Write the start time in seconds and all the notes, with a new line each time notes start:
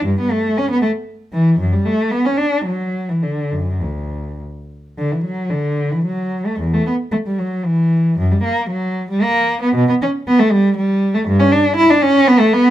0.05 G2
0.20 B3
0.32 A3
0.58 C#4
0.70 B3
0.82 A3
1.33 E3
1.59 F#2
1.73 G3
1.86 A3
2.11 B3
2.26 C#4
2.37 D4
2.66 F#3
3.09 E3
3.22 D3
3.52 F#2
3.82 D2
4.98 D3
5.12 E3
5.25 F#3
5.50 D3
5.92 E3
6.05 F#3
6.46 A3
6.60 E2
6.74 A3
6.87 B3
7.12 A3
7.27 G3
7.39 F#3
7.65 E3
8.18 F#2
8.32 G3
8.44 A#3
8.70 F#3
9.10 G3
9.23 A#3
9.62 B3
9.75 B2
9.89 B3
10.02 C#4
10.27 B3
10.39 A3
10.51 G3
10.78 G3
11.14 A3
11.28 G2
11.40 C#4
11.52 D4
11.76 E4
11.90 D4
12.02 C#4
12.27 B3
12.39 A3
12.53 B3